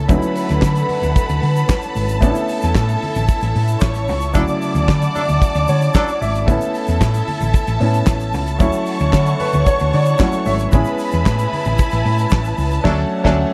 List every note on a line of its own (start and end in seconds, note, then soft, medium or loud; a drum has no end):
0.08 0.19 D2 loud
0.08 2.20 D3 medium
0.08 2.18 F#3 medium
0.08 2.18 A3 medium
0.08 2.19 C#4 medium
0.08 0.17 D#4 medium
0.08 2.18 B4 medium
0.08 2.20 F#5 medium
0.08 4.31 A5 medium
0.08 2.19 B5 loud
0.08 kick loud
0.08 closed hi-hat medium
0.08 muted conga soft
0.08 low conga medium
0.08 shaker medium
0.18 2.23 E4 medium
0.22 closed hi-hat soft
0.22 muted conga soft
0.22 shaker medium
0.35 open hi-hat medium
0.35 shaker medium
0.49 0.59 D2 medium
0.49 snare soft
0.49 closed hi-hat medium
0.49 shaker medium
0.62 0.82 D3 loud
0.62 kick loud
0.62 snare loud
0.62 clap medium
0.62 muted conga soft
0.62 shaker medium
0.75 closed hi-hat medium
0.75 muted conga soft
0.75 shaker medium
0.89 open hi-hat medium
0.89 low conga medium
1.02 1.13 D2 medium
1.02 closed hi-hat soft
1.02 low conga medium
1.02 shaker medium
1.15 kick loud
1.15 closed hi-hat medium
1.15 muted conga soft
1.15 shaker medium
1.29 1.39 D2 medium
1.29 closed hi-hat medium
1.29 muted conga soft
1.29 shaker medium
1.42 1.62 D3 medium
1.42 open hi-hat medium
1.42 high conga medium
1.56 closed hi-hat soft
1.56 shaker medium
1.67 kick loud
1.67 snare loud
1.67 clap loud
1.67 high conga medium
1.67 shaker loud
1.82 closed hi-hat soft
1.82 shaker medium
1.95 2.23 G#1 medium
1.95 open hi-hat medium
1.95 high conga medium
1.95 shaker medium
2.08 closed hi-hat medium
2.08 shaker medium
2.21 2.32 A1 loud
2.21 4.30 A3 medium
2.21 4.31 B3 medium
2.21 4.31 C#4 medium
2.21 2.29 D4 medium
2.21 4.33 E4 medium
2.21 3.79 A4 medium
2.21 4.33 E5 medium
2.21 3.79 A5 medium
2.21 kick loud
2.21 closed hi-hat medium
2.21 muted conga soft
2.21 low conga medium
2.21 shaker medium
2.30 4.35 E4 medium
2.35 closed hi-hat soft
2.35 muted conga soft
2.35 shaker medium
2.48 open hi-hat medium
2.48 shaker medium
2.62 2.73 E2 medium
2.62 snare soft
2.62 closed hi-hat soft
2.62 shaker medium
2.75 2.95 A2 loud
2.75 kick loud
2.75 snare loud
2.75 clap medium
2.75 muted conga soft
2.75 shaker medium
2.89 closed hi-hat medium
2.89 muted conga soft
2.89 shaker medium
3.02 open hi-hat medium
3.02 low conga medium
3.15 3.26 A1 loud
3.15 closed hi-hat soft
3.15 low conga medium
3.15 shaker medium
3.28 kick loud
3.28 closed hi-hat medium
3.28 shaker medium
3.41 3.52 A1 loud
3.41 closed hi-hat medium
3.41 muted conga soft
3.41 shaker soft
3.56 3.75 A2 loud
3.56 open hi-hat medium
3.56 high conga medium
3.68 closed hi-hat soft
3.68 shaker medium
3.80 4.09 A1 medium
3.80 4.33 C#5 medium
3.80 4.33 C#6 medium
3.80 kick loud
3.80 snare loud
3.80 clap loud
3.80 muted conga soft
3.80 high conga medium
3.80 shaker medium
3.94 closed hi-hat medium
3.94 muted conga soft
3.94 shaker medium
4.08 4.35 C#2 medium
4.08 open hi-hat medium
4.08 high conga medium
4.08 shaker medium
4.21 closed hi-hat soft
4.21 shaker medium
4.33 4.45 D2 loud
4.33 6.44 C#3 medium
4.33 6.43 F#3 medium
4.33 4.43 F#3 loud
4.33 6.43 A3 medium
4.33 4.43 D4 loud
4.33 6.44 E4 medium
4.33 4.43 A4 loud
4.33 6.43 D5 medium
4.33 6.46 D5 medium
4.33 6.46 F#5 medium
4.33 6.46 A5 medium
4.33 6.43 D6 medium
4.33 kick loud
4.33 closed hi-hat medium
4.33 low conga medium
4.33 shaker medium
4.48 closed hi-hat soft
4.48 muted conga soft
4.48 shaker medium
4.62 open hi-hat medium
4.62 shaker medium
4.75 4.85 D2 medium
4.75 closed hi-hat medium
4.75 shaker medium
4.88 5.08 D3 loud
4.88 kick loud
4.88 snare loud
4.88 clap medium
4.88 shaker medium
5.02 closed hi-hat medium
5.02 muted conga soft
5.02 shaker medium
5.14 5.23 F#3 medium
5.14 5.23 D4 medium
5.14 5.23 A4 medium
5.14 open hi-hat medium
5.14 high conga soft
5.14 low conga medium
5.14 shaker medium
5.29 5.38 D2 medium
5.29 closed hi-hat soft
5.29 low conga medium
5.29 shaker medium
5.42 kick loud
5.42 closed hi-hat medium
5.42 muted conga soft
5.42 shaker medium
5.55 5.65 D2 loud
5.55 closed hi-hat medium
5.55 muted conga soft
5.55 shaker soft
5.68 5.88 D3 medium
5.68 5.93 C#5 medium
5.68 open hi-hat medium
5.68 high conga medium
5.68 shaker medium
5.81 closed hi-hat soft
5.81 shaker medium
5.94 6.11 F#3 loud
5.94 6.11 D4 loud
5.94 6.11 A4 loud
5.94 6.20 D5 medium
5.94 kick loud
5.94 snare loud
5.94 clap medium
5.94 muted conga soft
5.94 high conga medium
5.94 shaker loud
6.08 closed hi-hat soft
6.08 shaker medium
6.21 6.48 G#1 medium
6.21 6.46 E5 medium
6.21 open hi-hat medium
6.21 high conga medium
6.21 shaker medium
6.35 closed hi-hat medium
6.35 shaker medium
6.46 6.58 A1 loud
6.46 7.77 A3 medium
6.46 7.78 B3 medium
6.46 7.78 C#4 medium
6.46 8.58 E4 medium
6.46 7.79 E4 medium
6.46 8.56 A4 medium
6.46 8.58 E5 medium
6.46 8.56 A5 medium
6.46 10.69 A5 medium
6.46 kick loud
6.46 closed hi-hat medium
6.46 muted conga soft
6.46 low conga medium
6.46 shaker medium
6.61 closed hi-hat soft
6.61 muted conga soft
6.61 shaker medium
6.74 open hi-hat medium
6.74 shaker medium
6.87 6.98 E2 medium
6.87 closed hi-hat medium
6.87 shaker medium
7.00 7.20 A2 loud
7.00 kick loud
7.00 snare loud
7.00 clap medium
7.00 muted conga soft
7.00 shaker medium
7.14 closed hi-hat medium
7.14 muted conga soft
7.14 shaker medium
7.27 open hi-hat medium
7.27 low conga medium
7.40 7.51 A1 loud
7.40 closed hi-hat soft
7.40 low conga medium
7.40 shaker medium
7.54 kick loud
7.54 closed hi-hat medium
7.54 muted conga soft
7.54 shaker medium
7.67 7.77 A1 medium
7.67 closed hi-hat soft
7.67 muted conga soft
7.67 shaker soft
7.80 8.00 A2 loud
7.80 8.58 A3 soft
7.80 8.60 B3 soft
7.80 8.59 C#4 medium
7.80 8.60 E4 medium
7.80 open hi-hat medium
7.80 high conga medium
7.94 closed hi-hat medium
7.94 shaker medium
8.06 8.34 A1 medium
8.06 kick loud
8.06 snare loud
8.06 clap medium
8.06 high conga medium
8.06 shaker loud
8.20 closed hi-hat medium
8.20 shaker medium
8.33 8.60 C#2 medium
8.33 open hi-hat medium
8.33 high conga medium
8.33 shaker medium
8.47 closed hi-hat medium
8.47 shaker medium
8.59 8.70 D2 loud
8.59 10.70 D3 medium
8.59 10.15 F#3 medium
8.59 10.16 A3 medium
8.59 10.16 C#4 medium
8.59 10.17 E4 medium
8.59 10.69 C#5 medium
8.59 10.70 F#5 medium
8.59 10.69 C#6 loud
8.59 kick loud
8.59 closed hi-hat medium
8.59 muted conga soft
8.59 low conga medium
8.59 shaker medium
8.73 closed hi-hat soft
8.73 muted conga soft
8.73 shaker medium
8.86 open hi-hat medium
8.86 shaker medium
8.99 9.10 D2 medium
8.99 closed hi-hat medium
8.99 shaker medium
9.13 9.33 D3 loud
9.13 kick loud
9.13 snare loud
9.13 clap medium
9.13 muted conga soft
9.13 shaker medium
9.26 closed hi-hat medium
9.26 muted conga soft
9.26 shaker medium
9.40 9.65 B4 medium
9.40 open hi-hat medium
9.40 low conga medium
9.53 9.63 D2 medium
9.53 closed hi-hat soft
9.53 low conga medium
9.53 shaker medium
9.66 9.91 C#5 medium
9.66 kick loud
9.66 closed hi-hat medium
9.66 shaker medium
9.79 9.90 D2 loud
9.79 closed hi-hat soft
9.79 shaker soft
9.93 10.13 D3 loud
9.93 10.18 D5 medium
9.93 open hi-hat medium
9.93 high conga medium
10.06 closed hi-hat medium
10.06 shaker medium
10.18 10.72 F#3 medium
10.18 10.72 A3 soft
10.18 10.73 C#4 soft
10.18 10.73 E4 medium
10.18 10.44 F#5 medium
10.18 kick loud
10.18 snare loud
10.18 clap medium
10.18 high conga medium
10.18 shaker medium
10.32 closed hi-hat soft
10.32 muted conga soft
10.32 shaker medium
10.45 10.66 G#1 medium
10.45 10.71 E5 medium
10.45 open hi-hat medium
10.45 high conga medium
10.45 shaker medium
10.59 closed hi-hat medium
10.59 shaker medium
10.71 10.83 A1 loud
10.71 12.80 G#3 medium
10.71 12.81 B3 medium
10.71 12.82 C#4 medium
10.71 12.82 E4 medium
10.71 12.81 B4 medium
10.71 12.82 G#5 medium
10.71 13.53 A5 medium
10.71 12.81 B5 loud
10.71 kick loud
10.71 closed hi-hat medium
10.71 muted conga soft
10.71 low conga medium
10.71 shaker medium
10.85 closed hi-hat soft
10.85 muted conga soft
10.85 shaker medium
10.98 open hi-hat medium
10.98 shaker medium
11.12 11.23 E2 medium
11.12 closed hi-hat medium
11.12 shaker medium
11.25 11.45 A2 loud
11.25 kick loud
11.25 snare loud
11.25 clap medium
11.25 muted conga soft
11.25 shaker medium
11.39 closed hi-hat medium
11.39 shaker medium
11.53 open hi-hat medium
11.53 low conga medium
11.65 11.75 A1 loud
11.65 closed hi-hat soft
11.65 low conga medium
11.65 shaker medium
11.78 kick loud
11.78 closed hi-hat medium
11.78 shaker medium
11.91 12.02 A1 medium
11.91 closed hi-hat medium
11.91 shaker soft
12.05 12.25 A2 loud
12.05 open hi-hat medium
12.05 high conga medium
12.18 closed hi-hat medium
12.18 shaker medium
12.30 12.52 A1 medium
12.30 kick loud
12.30 snare loud
12.30 clap loud
12.30 muted conga soft
12.30 high conga medium
12.30 shaker medium
12.44 closed hi-hat medium
12.44 shaker medium
12.58 12.78 C#2 medium
12.58 open hi-hat medium
12.58 high conga medium
12.58 shaker medium
12.71 closed hi-hat medium
12.71 shaker medium
12.83 13.03 D2 loud
12.83 13.02 F#3 medium
12.83 12.98 F#3 loud
12.83 13.03 A3 loud
12.83 13.03 C#4 medium
12.83 13.53 D4 medium
12.83 12.99 D4 loud
12.83 12.98 A4 loud
12.83 13.03 A4 loud
12.83 13.53 C#5 medium
12.83 13.53 F#5 medium
12.83 13.03 A5 loud
12.83 kick loud
12.83 snare loud
12.83 crash medium
13.24 13.43 D2 medium
13.24 13.42 F#3 loud
13.24 13.38 F#3 loud
13.24 13.43 A3 loud
13.24 13.43 C#4 loud
13.24 13.38 D4 loud
13.24 13.38 A4 loud
13.24 13.43 A4 loud
13.24 13.43 A5 loud
13.24 kick loud
13.24 snare loud